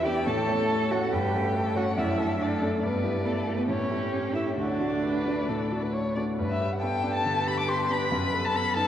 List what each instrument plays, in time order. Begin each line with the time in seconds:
Already playing: grand piano E2 B3 D4 G4
0.04 grand piano B3 D4 G4, cello G4, violin D5 G5
0.26 grand piano A2, cello A4, violin C#5 A5
0.49 grand piano A3 C#4 A4
0.90 grand piano A3 C#4 A4, cello F#4, violin F#5
1.12 grand piano G2, cello G4, violin B4 G5
1.35 grand piano A3 C#4 A4
1.55 violin A4
1.76 grand piano A3 C#4 A4, cello F#4, violin C#5 F#5
1.97 grand piano F#2, cello E4, violin D5 E5
2.18 grand piano A3 D4 A4, violin A4
2.39 cello D4, violin A4 D5
2.62 grand piano A3 D4 A4
2.82 grand piano G2, cello B3, violin B4 D5
3.04 grand piano B3 E4 G4
3.25 cello A3, violin A4
3.47 grand piano B3 E4 G4
3.57 cello B3, violin B4
3.68 grand piano A2, cello C#4, violin G4 C#5
3.90 grand piano A3 E4 G4
4.34 grand piano A3 E4 G4, cello E4, violin E5
4.57 grand piano D2, cello D4, violin F#4 D5
4.80 grand piano A3 D4 F#4
5.04 violin B4
5.26 grand piano A3 D4 F#4
5.48 grand piano A2, violin A4
5.71 grand piano A3 D4 F#4
5.82 violin B4
5.93 violin C#5
6.16 grand piano A3 D4 F#4, violin D5
6.38 grand piano G2, violin B4
6.50 violin E5
6.61 grand piano G4
6.72 violin F#5
6.82 grand piano B3, violin A4 G5
7.03 grand piano D4
7.14 violin A5
7.24 grand piano D3, cello B4
7.47 grand piano G4, violin B5
7.59 violin D6
7.68 grand piano B3, violin G4 C6
7.90 grand piano D4, violin B5
8.11 grand piano F#2, violin B4
8.33 grand piano A4
8.44 violin A5
8.54 grand piano B3, violin A4 B5, cello A4
8.76 grand piano D#4, violin A5